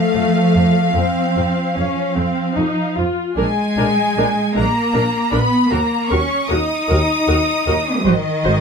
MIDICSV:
0, 0, Header, 1, 6, 480
1, 0, Start_track
1, 0, Key_signature, -5, "minor"
1, 0, Tempo, 805369
1, 2013, Time_signature, 12, 3, 24, 8
1, 2488, Tempo, 775194
1, 5232, End_track
2, 0, Start_track
2, 0, Title_t, "Violin section"
2, 0, Program_c, 0, 48
2, 0, Note_on_c, 0, 77, 75
2, 1746, Note_off_c, 0, 77, 0
2, 2005, Note_on_c, 0, 80, 72
2, 2701, Note_off_c, 0, 80, 0
2, 2726, Note_on_c, 0, 82, 72
2, 3200, Note_on_c, 0, 83, 69
2, 3202, Note_off_c, 0, 82, 0
2, 3442, Note_off_c, 0, 83, 0
2, 3442, Note_on_c, 0, 82, 64
2, 3679, Note_off_c, 0, 82, 0
2, 3689, Note_on_c, 0, 85, 65
2, 3928, Note_off_c, 0, 85, 0
2, 3928, Note_on_c, 0, 87, 67
2, 4894, Note_off_c, 0, 87, 0
2, 4898, Note_on_c, 0, 75, 72
2, 5232, Note_off_c, 0, 75, 0
2, 5232, End_track
3, 0, Start_track
3, 0, Title_t, "Violin section"
3, 0, Program_c, 1, 48
3, 0, Note_on_c, 1, 77, 74
3, 1773, Note_off_c, 1, 77, 0
3, 2015, Note_on_c, 1, 80, 74
3, 2706, Note_off_c, 1, 80, 0
3, 2734, Note_on_c, 1, 82, 68
3, 3204, Note_on_c, 1, 83, 65
3, 3206, Note_off_c, 1, 82, 0
3, 3444, Note_off_c, 1, 83, 0
3, 3447, Note_on_c, 1, 82, 62
3, 3677, Note_on_c, 1, 85, 64
3, 3686, Note_off_c, 1, 82, 0
3, 3916, Note_on_c, 1, 87, 73
3, 3922, Note_off_c, 1, 85, 0
3, 4886, Note_on_c, 1, 75, 77
3, 4888, Note_off_c, 1, 87, 0
3, 5232, Note_off_c, 1, 75, 0
3, 5232, End_track
4, 0, Start_track
4, 0, Title_t, "Viola section"
4, 0, Program_c, 2, 48
4, 0, Note_on_c, 2, 57, 69
4, 547, Note_off_c, 2, 57, 0
4, 569, Note_on_c, 2, 60, 62
4, 1047, Note_on_c, 2, 61, 59
4, 1050, Note_off_c, 2, 60, 0
4, 1287, Note_off_c, 2, 61, 0
4, 1289, Note_on_c, 2, 60, 58
4, 1522, Note_on_c, 2, 63, 55
4, 1527, Note_off_c, 2, 60, 0
4, 1767, Note_off_c, 2, 63, 0
4, 1767, Note_on_c, 2, 65, 46
4, 2007, Note_on_c, 2, 62, 52
4, 2007, Note_on_c, 2, 70, 52
4, 2011, Note_off_c, 2, 65, 0
4, 2054, Note_off_c, 2, 70, 0
4, 2055, Note_off_c, 2, 62, 0
4, 2248, Note_on_c, 2, 62, 46
4, 2249, Note_on_c, 2, 70, 48
4, 2296, Note_off_c, 2, 62, 0
4, 2297, Note_off_c, 2, 70, 0
4, 2488, Note_on_c, 2, 70, 43
4, 2489, Note_on_c, 2, 62, 48
4, 2537, Note_off_c, 2, 70, 0
4, 2538, Note_off_c, 2, 62, 0
4, 2722, Note_on_c, 2, 62, 46
4, 2724, Note_on_c, 2, 70, 50
4, 2771, Note_off_c, 2, 62, 0
4, 2773, Note_off_c, 2, 70, 0
4, 2957, Note_on_c, 2, 62, 52
4, 2960, Note_on_c, 2, 70, 49
4, 3006, Note_off_c, 2, 62, 0
4, 3010, Note_off_c, 2, 70, 0
4, 3196, Note_on_c, 2, 62, 54
4, 3197, Note_on_c, 2, 70, 49
4, 3245, Note_off_c, 2, 62, 0
4, 3247, Note_off_c, 2, 70, 0
4, 3436, Note_on_c, 2, 70, 49
4, 3437, Note_on_c, 2, 66, 53
4, 3485, Note_off_c, 2, 70, 0
4, 3486, Note_off_c, 2, 66, 0
4, 3685, Note_on_c, 2, 66, 45
4, 3685, Note_on_c, 2, 70, 52
4, 3734, Note_off_c, 2, 66, 0
4, 3735, Note_off_c, 2, 70, 0
4, 3922, Note_on_c, 2, 70, 48
4, 3925, Note_on_c, 2, 66, 47
4, 3972, Note_off_c, 2, 70, 0
4, 3974, Note_off_c, 2, 66, 0
4, 4163, Note_on_c, 2, 70, 50
4, 4166, Note_on_c, 2, 66, 48
4, 4212, Note_off_c, 2, 70, 0
4, 4216, Note_off_c, 2, 66, 0
4, 4407, Note_on_c, 2, 66, 51
4, 4408, Note_on_c, 2, 70, 45
4, 4457, Note_off_c, 2, 66, 0
4, 4458, Note_off_c, 2, 70, 0
4, 4650, Note_on_c, 2, 66, 47
4, 4652, Note_on_c, 2, 70, 48
4, 4700, Note_off_c, 2, 66, 0
4, 4702, Note_off_c, 2, 70, 0
4, 4888, Note_on_c, 2, 72, 56
4, 4890, Note_on_c, 2, 66, 59
4, 4938, Note_off_c, 2, 72, 0
4, 4940, Note_off_c, 2, 66, 0
4, 5128, Note_on_c, 2, 66, 52
4, 5129, Note_on_c, 2, 72, 54
4, 5177, Note_off_c, 2, 66, 0
4, 5179, Note_off_c, 2, 72, 0
4, 5232, End_track
5, 0, Start_track
5, 0, Title_t, "Cello section"
5, 0, Program_c, 3, 48
5, 0, Note_on_c, 3, 53, 81
5, 1746, Note_off_c, 3, 53, 0
5, 2007, Note_on_c, 3, 56, 84
5, 2702, Note_off_c, 3, 56, 0
5, 2724, Note_on_c, 3, 58, 77
5, 3201, Note_off_c, 3, 58, 0
5, 3201, Note_on_c, 3, 59, 82
5, 3438, Note_on_c, 3, 58, 72
5, 3443, Note_off_c, 3, 59, 0
5, 3681, Note_off_c, 3, 58, 0
5, 3682, Note_on_c, 3, 61, 79
5, 3924, Note_on_c, 3, 63, 73
5, 3925, Note_off_c, 3, 61, 0
5, 4888, Note_on_c, 3, 51, 86
5, 4892, Note_off_c, 3, 63, 0
5, 5232, Note_off_c, 3, 51, 0
5, 5232, End_track
6, 0, Start_track
6, 0, Title_t, "Double bass section"
6, 0, Program_c, 4, 48
6, 87, Note_on_c, 4, 41, 49
6, 135, Note_off_c, 4, 41, 0
6, 330, Note_on_c, 4, 41, 47
6, 377, Note_off_c, 4, 41, 0
6, 570, Note_on_c, 4, 41, 54
6, 618, Note_off_c, 4, 41, 0
6, 813, Note_on_c, 4, 41, 48
6, 861, Note_off_c, 4, 41, 0
6, 1053, Note_on_c, 4, 41, 47
6, 1101, Note_off_c, 4, 41, 0
6, 1288, Note_on_c, 4, 41, 50
6, 1336, Note_off_c, 4, 41, 0
6, 1527, Note_on_c, 4, 41, 47
6, 1574, Note_off_c, 4, 41, 0
6, 1769, Note_on_c, 4, 41, 45
6, 1816, Note_off_c, 4, 41, 0
6, 2009, Note_on_c, 4, 34, 52
6, 2057, Note_off_c, 4, 34, 0
6, 2248, Note_on_c, 4, 34, 55
6, 2295, Note_off_c, 4, 34, 0
6, 2484, Note_on_c, 4, 34, 51
6, 2533, Note_off_c, 4, 34, 0
6, 2727, Note_on_c, 4, 34, 54
6, 2777, Note_off_c, 4, 34, 0
6, 2961, Note_on_c, 4, 34, 51
6, 3010, Note_off_c, 4, 34, 0
6, 3202, Note_on_c, 4, 34, 50
6, 3252, Note_off_c, 4, 34, 0
6, 3443, Note_on_c, 4, 39, 55
6, 3492, Note_off_c, 4, 39, 0
6, 3686, Note_on_c, 4, 39, 56
6, 3735, Note_off_c, 4, 39, 0
6, 3928, Note_on_c, 4, 39, 55
6, 3977, Note_off_c, 4, 39, 0
6, 4174, Note_on_c, 4, 39, 64
6, 4223, Note_off_c, 4, 39, 0
6, 4416, Note_on_c, 4, 39, 57
6, 4465, Note_off_c, 4, 39, 0
6, 4656, Note_on_c, 4, 39, 53
6, 4706, Note_off_c, 4, 39, 0
6, 4897, Note_on_c, 4, 32, 61
6, 4947, Note_off_c, 4, 32, 0
6, 5132, Note_on_c, 4, 32, 62
6, 5182, Note_off_c, 4, 32, 0
6, 5232, End_track
0, 0, End_of_file